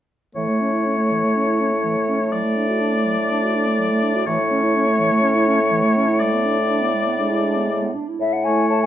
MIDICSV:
0, 0, Header, 1, 6, 480
1, 0, Start_track
1, 0, Key_signature, 3, "major"
1, 0, Tempo, 492611
1, 339, Time_signature, 4, 2, 24, 8
1, 3214, Tempo, 483871
1, 6574, Tempo, 503778
1, 8648, End_track
2, 0, Start_track
2, 0, Title_t, "Flute"
2, 0, Program_c, 0, 73
2, 8019, Note_on_c, 0, 76, 57
2, 8141, Note_on_c, 0, 78, 51
2, 8155, Note_off_c, 0, 76, 0
2, 8247, Note_on_c, 0, 80, 49
2, 8261, Note_off_c, 0, 78, 0
2, 8483, Note_off_c, 0, 80, 0
2, 8488, Note_on_c, 0, 81, 60
2, 8608, Note_off_c, 0, 81, 0
2, 8613, Note_on_c, 0, 80, 49
2, 8648, Note_off_c, 0, 80, 0
2, 8648, End_track
3, 0, Start_track
3, 0, Title_t, "Oboe"
3, 0, Program_c, 1, 68
3, 346, Note_on_c, 1, 73, 40
3, 2221, Note_off_c, 1, 73, 0
3, 2260, Note_on_c, 1, 74, 42
3, 4134, Note_off_c, 1, 74, 0
3, 4173, Note_on_c, 1, 73, 49
3, 6092, Note_on_c, 1, 74, 47
3, 6107, Note_off_c, 1, 73, 0
3, 7775, Note_off_c, 1, 74, 0
3, 8254, Note_on_c, 1, 73, 37
3, 8648, Note_off_c, 1, 73, 0
3, 8648, End_track
4, 0, Start_track
4, 0, Title_t, "Clarinet"
4, 0, Program_c, 2, 71
4, 342, Note_on_c, 2, 52, 36
4, 471, Note_on_c, 2, 57, 32
4, 486, Note_off_c, 2, 52, 0
4, 592, Note_on_c, 2, 61, 31
4, 607, Note_off_c, 2, 57, 0
4, 714, Note_on_c, 2, 64, 30
4, 729, Note_off_c, 2, 61, 0
4, 836, Note_on_c, 2, 61, 34
4, 850, Note_off_c, 2, 64, 0
4, 955, Note_on_c, 2, 57, 34
4, 970, Note_off_c, 2, 61, 0
4, 1081, Note_on_c, 2, 52, 33
4, 1095, Note_off_c, 2, 57, 0
4, 1205, Note_on_c, 2, 57, 32
4, 1220, Note_off_c, 2, 52, 0
4, 1315, Note_off_c, 2, 57, 0
4, 1321, Note_on_c, 2, 61, 33
4, 1442, Note_on_c, 2, 64, 36
4, 1456, Note_off_c, 2, 61, 0
4, 1560, Note_on_c, 2, 61, 33
4, 1574, Note_off_c, 2, 64, 0
4, 1677, Note_on_c, 2, 57, 35
4, 1691, Note_off_c, 2, 61, 0
4, 1799, Note_on_c, 2, 52, 35
4, 1813, Note_off_c, 2, 57, 0
4, 1918, Note_on_c, 2, 57, 32
4, 1932, Note_off_c, 2, 52, 0
4, 2032, Note_on_c, 2, 61, 35
4, 2046, Note_off_c, 2, 57, 0
4, 2150, Note_on_c, 2, 64, 34
4, 2165, Note_off_c, 2, 61, 0
4, 2258, Note_off_c, 2, 64, 0
4, 2263, Note_on_c, 2, 54, 37
4, 2381, Note_on_c, 2, 57, 34
4, 2396, Note_off_c, 2, 54, 0
4, 2504, Note_on_c, 2, 62, 34
4, 2519, Note_off_c, 2, 57, 0
4, 2620, Note_on_c, 2, 66, 34
4, 2635, Note_off_c, 2, 62, 0
4, 2733, Note_on_c, 2, 62, 37
4, 2747, Note_off_c, 2, 66, 0
4, 2857, Note_on_c, 2, 57, 36
4, 2872, Note_off_c, 2, 62, 0
4, 2977, Note_on_c, 2, 54, 38
4, 2992, Note_off_c, 2, 57, 0
4, 3102, Note_on_c, 2, 57, 37
4, 3117, Note_off_c, 2, 54, 0
4, 3217, Note_off_c, 2, 57, 0
4, 3225, Note_on_c, 2, 62, 38
4, 3351, Note_on_c, 2, 66, 37
4, 3366, Note_off_c, 2, 62, 0
4, 3461, Note_on_c, 2, 62, 41
4, 3476, Note_off_c, 2, 66, 0
4, 3580, Note_on_c, 2, 57, 38
4, 3595, Note_off_c, 2, 62, 0
4, 3703, Note_on_c, 2, 54, 41
4, 3718, Note_off_c, 2, 57, 0
4, 3826, Note_on_c, 2, 57, 39
4, 3841, Note_off_c, 2, 54, 0
4, 3939, Note_on_c, 2, 62, 40
4, 3953, Note_off_c, 2, 57, 0
4, 4057, Note_on_c, 2, 66, 41
4, 4072, Note_off_c, 2, 62, 0
4, 4174, Note_off_c, 2, 66, 0
4, 4178, Note_on_c, 2, 52, 46
4, 4296, Note_on_c, 2, 57, 40
4, 4311, Note_off_c, 2, 52, 0
4, 4416, Note_on_c, 2, 61, 41
4, 4430, Note_off_c, 2, 57, 0
4, 4537, Note_on_c, 2, 64, 39
4, 4552, Note_off_c, 2, 61, 0
4, 4658, Note_on_c, 2, 61, 44
4, 4672, Note_off_c, 2, 64, 0
4, 4773, Note_on_c, 2, 57, 41
4, 4788, Note_off_c, 2, 61, 0
4, 4889, Note_on_c, 2, 52, 45
4, 4904, Note_off_c, 2, 57, 0
4, 5016, Note_on_c, 2, 57, 44
4, 5030, Note_off_c, 2, 52, 0
4, 5118, Note_off_c, 2, 57, 0
4, 5124, Note_on_c, 2, 61, 43
4, 5250, Note_on_c, 2, 64, 45
4, 5265, Note_off_c, 2, 61, 0
4, 5373, Note_on_c, 2, 61, 44
4, 5388, Note_off_c, 2, 64, 0
4, 5498, Note_on_c, 2, 57, 43
4, 5512, Note_off_c, 2, 61, 0
4, 5609, Note_on_c, 2, 52, 44
4, 5624, Note_off_c, 2, 57, 0
4, 5729, Note_on_c, 2, 57, 41
4, 5744, Note_off_c, 2, 52, 0
4, 5860, Note_on_c, 2, 61, 45
4, 5875, Note_off_c, 2, 57, 0
4, 5977, Note_on_c, 2, 64, 41
4, 5992, Note_off_c, 2, 61, 0
4, 6093, Note_off_c, 2, 64, 0
4, 6105, Note_on_c, 2, 56, 44
4, 6228, Note_on_c, 2, 59, 40
4, 6243, Note_off_c, 2, 56, 0
4, 6347, Note_on_c, 2, 62, 41
4, 6362, Note_off_c, 2, 59, 0
4, 6477, Note_on_c, 2, 64, 39
4, 6492, Note_off_c, 2, 62, 0
4, 6588, Note_on_c, 2, 62, 44
4, 6603, Note_off_c, 2, 64, 0
4, 6701, Note_on_c, 2, 59, 42
4, 6715, Note_off_c, 2, 62, 0
4, 6813, Note_on_c, 2, 56, 41
4, 6828, Note_off_c, 2, 59, 0
4, 6933, Note_on_c, 2, 59, 39
4, 6947, Note_off_c, 2, 56, 0
4, 7048, Note_off_c, 2, 59, 0
4, 7053, Note_on_c, 2, 62, 35
4, 7175, Note_on_c, 2, 64, 39
4, 7189, Note_off_c, 2, 62, 0
4, 7285, Note_on_c, 2, 62, 39
4, 7299, Note_off_c, 2, 64, 0
4, 7412, Note_on_c, 2, 59, 35
4, 7426, Note_off_c, 2, 62, 0
4, 7533, Note_on_c, 2, 56, 36
4, 7547, Note_off_c, 2, 59, 0
4, 7653, Note_on_c, 2, 59, 33
4, 7667, Note_off_c, 2, 56, 0
4, 7775, Note_on_c, 2, 62, 35
4, 7789, Note_off_c, 2, 59, 0
4, 7910, Note_on_c, 2, 64, 33
4, 7924, Note_off_c, 2, 62, 0
4, 8024, Note_off_c, 2, 64, 0
4, 8263, Note_on_c, 2, 64, 35
4, 8648, Note_off_c, 2, 64, 0
4, 8648, End_track
5, 0, Start_track
5, 0, Title_t, "French horn"
5, 0, Program_c, 3, 60
5, 339, Note_on_c, 3, 57, 36
5, 4131, Note_off_c, 3, 57, 0
5, 4167, Note_on_c, 3, 57, 41
5, 6738, Note_off_c, 3, 57, 0
5, 7048, Note_on_c, 3, 56, 43
5, 7737, Note_off_c, 3, 56, 0
5, 8251, Note_on_c, 3, 57, 35
5, 8648, Note_off_c, 3, 57, 0
5, 8648, End_track
6, 0, Start_track
6, 0, Title_t, "Bassoon"
6, 0, Program_c, 4, 70
6, 345, Note_on_c, 4, 45, 41
6, 4134, Note_off_c, 4, 45, 0
6, 4173, Note_on_c, 4, 45, 48
6, 7736, Note_off_c, 4, 45, 0
6, 8019, Note_on_c, 4, 45, 46
6, 8439, Note_off_c, 4, 45, 0
6, 8496, Note_on_c, 4, 45, 43
6, 8648, Note_off_c, 4, 45, 0
6, 8648, End_track
0, 0, End_of_file